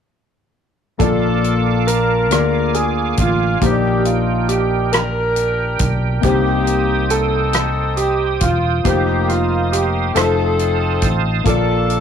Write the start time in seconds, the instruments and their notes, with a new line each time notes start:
0.98 fingered electric bass A#1, upright piano A#2 A#3 F4 D5 A5, tonewheel organ A#3 F5 A5 D6, horn section D4 F4, grand piano A4, kick, closed hi-hat
1.02 horn section A4
1.44 closed hi-hat
1.87 horn section F4 A#4, grand piano A#4, closed hi-hat
2.30 fingered electric bass D2, upright piano D3 A#3 F4 G#4 D5, tonewheel organ G#5 D6, cross-stick, closed hi-hat
2.74 grand piano G#4, horn section G#4, closed hi-hat
3.17 fingered electric bass A1, grand piano F4, horn section F4, kick, closed hi-hat
3.61 fingered electric bass A#1, upright piano A#2 D#3 A#3 G4, horn section D4 D#4 G4, grand piano G4, tonewheel organ A#4 G5, kick, closed hi-hat
3.65 upright piano C5
3.71 upright piano D5
3.99 grand piano G4
4.05 horn section F4, grand piano F4, closed hi-hat
4.49 grand piano G4, horn section G4, closed hi-hat
4.92 horn section D4 G4 A#4, grand piano A#4, cross-stick, closed hi-hat
5.36 closed hi-hat
5.79 fingered electric bass B1, kick, closed hi-hat
6.21 fingered electric bass C2, upright piano C3 A#3 D#4 G4, horn section A#3 D#4, grand piano G4, tonewheel organ D#6, kick, closed hi-hat
6.25 horn section G4, upright piano C5, tonewheel organ C5
6.67 closed hi-hat
7.10 horn section D#4 A4, grand piano A4, closed hi-hat
7.53 cross-stick, closed hi-hat
7.97 grand piano G4, horn section G4, closed hi-hat
8.41 fingered electric bass E1, grand piano F4, horn section F4, kick, closed hi-hat
8.84 fingered electric bass F1, upright piano A#3 D#4 F4 C5, horn section A#3 D#4 G4, grand piano G4, tonewheel organ F5, kick, closed hi-hat
9.28 grand piano F4, horn section F4, cross-stick, closed hi-hat
9.72 grand piano G4, horn section G4, closed hi-hat
10.14 fingered electric bass F1, upright piano A3 D#4 F4 C5, horn section C4 A4, grand piano A4, tonewheel organ A5 D#6, cross-stick, closed hi-hat
10.18 horn section D#4
10.59 closed hi-hat
11.02 fingered electric bass A1, kick, closed hi-hat
11.43 fingered electric bass A#1, upright piano A#2 A#3 F4 A5, tonewheel organ A#3 D6, horn section D4 F4 A4, grand piano A4, kick, closed hi-hat
11.48 upright piano D5
11.90 closed hi-hat